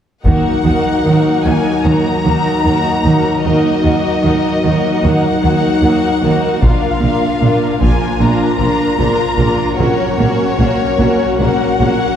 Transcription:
0.24 D#2 D#3 F#3 A#3 D#4 F#4 A#4 F#5, taiko
0.64 D#2 D#3 A#3 D#4 F#4 A#4
1.05 D#2 D#3 A#3 D#4 F#4 A#4
1.44 D#2 D#3 A#3 D#4 F#4 A#4 G#5
1.83 D#2 D#3 A#3 D#4 F#4 A#4 A#5
2.24 D#2 D#3 A#3 D#4 F#4 A#4
2.64 D#2 D#3 A#3 D#4 F#4 A#4
3.04 D#2 D#3 A#3 D#4 F#4 A#4
3.42 D#2 D#3 F#3 A#3 D#4 F#4 A#4 D#5
3.82 D#2 D#3 A#3 D#4 F#4 A#4
4.22 D#2 D#3 A#3 D#4 F#4 A#4
4.62 D#2 D#3 A#3 D#4 F#4 A#4
5.02 D#2 D#3 A#3 D#4 F#4 A#4 F#5
5.42 D#2 D#3 A#3 D#4 F#4 A#4
5.82 D#2 D#3 A#3 D#4 F#4 A#4
6.22 D#2 D#3 A#3 D#4 F#4 A#4
6.61 A#1 A#2 F3 A#3 D4 F4 A#4 F5, taiko
7.00 A#1 A#2 A#3 D4 F4 A#4
7.40 A#1 A#2 A#3 D4 F4 A#4
7.80 A#1 A#2 A#3 D4 F4 A#4 G#5, taiko
8.20 A#1 A#2 A#3 D4 F4 A#4 A#5
8.60 A#1 A#2 A#3 D4 F4 A#4
8.99 A#1 A#2 A#3 D4 F4 A#4
9.39 A#1 A#2 A#3 D4 F4 A#4
9.78 A#1 A#2 F#3 A#3 C#4 F#4 A#4 C#5
10.18 A#1 A#2 A#3 C#4 F#4 A#4
10.58 A#1 A#2 A#3 C#4 F#4 A#4
10.98 A#1 A#2 A#3 C#4 F#4 A#4
11.39 A#1 A#2 A#3 C#4 F#4 A#4 F#5
11.78 A#1 A#2 A#3 C#4 F#4 A#4

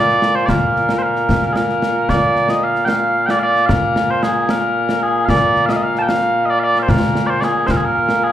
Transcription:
Already playing: A#2 A#3 D5
0.09 snare
0.22 snare
0.35 C5
0.46 A#4 D5, concert bass drum, snare
0.76 snare
0.89 snare
0.99 C5
1.03 A#4
1.16 snare
1.29 concert bass drum, snare
1.42 snare
1.53 G#4 A#4, snare
1.69 snare
1.82 snare
2.09 D5, concert bass drum, snare
2.36 snare
2.49 D#5, snare
2.64 F5
2.75 snare
2.85 F5 G5, snare
3.26 D5 G5, snare
3.39 D5 F5
3.56 snare
3.66 A#4 F5, concert bass drum, snare
3.96 snare
4.11 C5
4.23 G#4, snare
4.49 A#4, snare
4.89 snare
5.03 G#4
5.25 D5 F5, concert bass drum, snare
5.56 snare
5.66 D#5 F5, snare
5.73 D#5 F5
5.83 F5
5.95 A5, snare
6.02 G5
6.09 F5, snare
6.45 D#5
6.50 D5
6.59 F5
6.64 D5
6.75 F5, snare
6.82 C5
6.88 A#4, concert bass drum, snare
7.15 snare
7.27 C5 D5
7.41 G#4 D5, snare
7.67 C5, concert bass drum, snare
7.71 A#4
7.76 G#4
7.85 A#4
8.09 snare
8.24 G#4

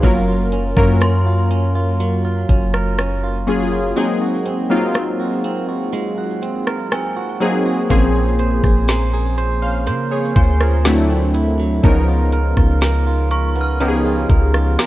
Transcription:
Already playing: C#3 B3 F4 A#4
0.03 F#1 F#3 A#3 C#4 F4 A#4, kick, closed hi-hat
0.28 F4
0.52 C#4, closed hi-hat
0.76 F#2 F#3 A#3 C#4 F4 A#4, kick, cross-stick
1.01 C#4 C6, cross-stick, closed hi-hat
1.26 F4
1.51 C#4, closed hi-hat
1.75 F4, closed hi-hat
2.00 F#3, closed hi-hat
2.25 F4
2.49 F#1 C#4, kick, closed hi-hat
2.74 A#4, cross-stick
2.99 C#4, cross-stick, closed hi-hat
3.24 F4
3.47 F#3 A#3 C#4 F4 G#4, closed hi-hat
3.72 F4
3.96 F#3 G#3 A#3 C4 D#4 G#4, closed hi-hat
4.21 F#4
4.46 C4, closed hi-hat
4.70 F#3 A#3 C4 D#4 F4 A#4
4.94 C4, cross-stick, closed hi-hat
5.20 F#4
5.44 C4, closed hi-hat
5.69 F#4
5.93 G#3, closed hi-hat
6.18 F#4
6.42 C4, closed hi-hat
6.67 A#4, cross-stick
6.92 C4 G#5, cross-stick, closed hi-hat
7.16 F#4
7.40 F#3 A#3 C4 D#4 G#4, closed hi-hat
7.66 F#4
7.89 A#1 F3 A#3 C4 C#4 G#4 C5, kick, closed hi-hat
8.15 G#4
8.39 C5, closed hi-hat
8.64 A#1 G#4, kick, cross-stick
8.88 C5 A#5, snare, closed hi-hat
9.13 G#4
9.38 C5, closed hi-hat
9.62 C#4 C5 F5, closed hi-hat
9.87 C#3 A#3 C5, closed hi-hat
10.11 G#4 C#5
10.36 D2 F4 C5 G#5, kick, closed hi-hat
10.61 F4 G#4 A#4, cross-stick
10.85 D3 F#3 A3 C4 D4 E4, snare, closed hi-hat
11.10 C4
11.34 E4, closed hi-hat
11.59 F#3
11.83 C#2 C#3 F3 B3 C#4 D#4 A#4, kick, closed hi-hat
12.08 F4
12.32 A#4, closed hi-hat
12.57 C#2 F4, kick, cross-stick
12.81 A#4, snare, closed hi-hat
13.07 F4
13.31 A#4 C#6, closed hi-hat
13.56 B3, closed hi-hat
13.61 F6
13.80 C#3 F3 B3 C#4 D#4 G4 A#4, closed hi-hat
13.88 G#4
14.05 F4
14.29 C#2 A#4, kick, closed hi-hat
14.54 F4, cross-stick
14.79 A#4, snare, closed hi-hat

